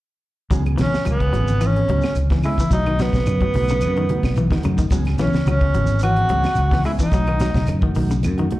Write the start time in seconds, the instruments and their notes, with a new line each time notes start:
0.51 fingered electric bass C#2, clean electric guitar E3 F#3 B3 C#4 G#4, kick, closed hi-hat, shekere
0.66 clean electric guitar B3 C#4 G#4, closed hi-hat, claves
0.78 fingered electric bass B1, clean electric guitar E3 B3 C#4 G#4, tenor saxophone C#4, snare, closed hi-hat, shekere
0.94 muted fingered electric bass stroke, snare, shekere
1.05 fingered electric bass C#2, clean electric guitar F#3, closed hi-hat, high conga, claves, shekere
1.10 tenor saxophone B3
1.20 clean electric guitar B3 G#4, kick, closed hi-hat
1.33 fingered electric bass G#1, clean electric guitar E3 F#3 B3 C#4 G#4, closed hi-hat, high conga, shekere
1.48 closed hi-hat, shekere
1.61 clean electric guitar E3, closed hi-hat, claves, shekere
1.66 tenor saxophone C#4
1.76 clean electric guitar B3 C#4 G#4, closed hi-hat
1.89 fingered electric bass C#2, clean electric guitar E3 F#3 B3 C#4 G#4, closed hi-hat, high conga
2.01 snare, closed hi-hat, claves, shekere
2.15 fingered electric bass C#2, closed hi-hat, shekere
2.30 clean electric guitar E3 B3 C#4 G#4, kick, snare, closed hi-hat, high conga
2.43 clean electric guitar E3 G#3 B3 C#4 G#4, tenor saxophone E4, open hi-hat, claves, shekere
2.58 clean electric guitar E3, kick, high conga, shekere
2.71 fingered electric bass B1, clean electric guitar F#3 A3 D#4 F#4, tenor saxophone D#4, kick, closed hi-hat, shekere
2.86 clean electric guitar D#3 A3 D#4 F#4, closed hi-hat, claves
2.99 clean electric guitar F#3 A3 D#4 F#4, tenor saxophone B3, snare, closed hi-hat, shekere
3.13 fingered electric bass B1, kick, snare, closed hi-hat, high conga, shekere
3.26 fingered electric bass F#2, closed hi-hat, high conga, claves, shekere
3.41 clean electric guitar F#3 A3 D#4 F#4, kick, closed hi-hat
3.54 fingered electric bass B1, clean electric guitar F#3 A3 D#4 F#4, muted clean electric guitar stroke, open hi-hat, high conga, shekere
3.68 clean electric guitar C#3, closed hi-hat, shekere
3.81 fingered electric bass F#2, closed hi-hat, claves, shekere
3.96 clean electric guitar D#3 A3 D#4 F#4, closed hi-hat
4.09 clean electric guitar F#3 A3 D#4 F#4, closed hi-hat, high conga
4.23 fingered electric bass B1, kick, snare, closed hi-hat, claves, shekere
4.36 clean electric guitar E3, closed hi-hat, shekere
4.51 clean electric guitar D#3 A3 D#4 F#4, kick, snare, closed hi-hat, high conga
4.63 fingered electric bass F#2, clean electric guitar C#3 F#3 A3 D#4 F#4, closed hi-hat, claves, shekere
4.78 clean electric guitar D#3, muted fingered electric bass stroke, kick, closed hi-hat, shekere
4.90 fingered electric bass C#2, clean electric guitar E3 F#3 B3 C#4 G#4, kick, closed hi-hat, shekere
5.05 clean electric guitar B3 C#4 G#4, snare, closed hi-hat, claves
5.18 fingered electric bass B1, clean electric guitar E3 B3 C#4 G#4, tenor saxophone C#4, snare, closed hi-hat, shekere
5.33 muted fingered electric bass stroke, snare, high conga, shekere
5.46 fingered electric bass C#2, clean electric guitar F#3, tenor saxophone C#4, closed hi-hat, high conga, claves, shekere
5.61 clean electric guitar B3 C#4 G#4, kick, closed hi-hat
5.74 fingered electric bass G#1, clean electric guitar E3 F#3 B3 C#4 G#4, closed hi-hat, high conga, shekere
5.87 closed hi-hat, shekere
5.99 clean electric guitar E3, closed hi-hat, shekere
6.03 tenor saxophone F#4, claves
6.16 clean electric guitar B3 C#4 G#4, closed hi-hat
6.29 fingered electric bass C#2, clean electric guitar E3 F#3 B3 C#4 G#4, closed hi-hat, high conga
6.44 snare, closed hi-hat, claves, shekere
6.55 fingered electric bass C#2, closed hi-hat, shekere
6.71 clean electric guitar E3 B3 C#4 G#4, kick, snare, closed hi-hat, high conga
6.84 clean electric guitar E3 G#3 B3 C#4 G#4, tenor saxophone E4, open hi-hat, claves, shekere
6.99 clean electric guitar E3, tenor saxophone D#4, kick, shekere
7.12 fingered electric bass B1, clean electric guitar F#3 A3 D#4 F#4, kick, closed hi-hat, shekere
7.27 clean electric guitar D#3 A3 F#4, closed hi-hat, claves
7.39 clean electric guitar F#3 A3 D#4 F#4, snare, closed hi-hat, shekere
7.54 fingered electric bass B1, kick, snare, closed hi-hat, high conga, shekere
7.67 fingered electric bass F#2, closed hi-hat, high conga, claves, shekere
7.82 clean electric guitar D#3 A3 D#4 F#4, kick, closed hi-hat
7.95 fingered electric bass B1, clean electric guitar D#3 F#3 A3 D#4 F#4, open hi-hat, high conga, shekere
8.10 clean electric guitar C#3, closed hi-hat, shekere
8.23 fingered electric bass F#2, closed hi-hat, high conga, claves, shekere
8.38 clean electric guitar D#3 A3 D#4 F#4, closed hi-hat
8.51 clean electric guitar A3 D#4 F#4, closed hi-hat, high conga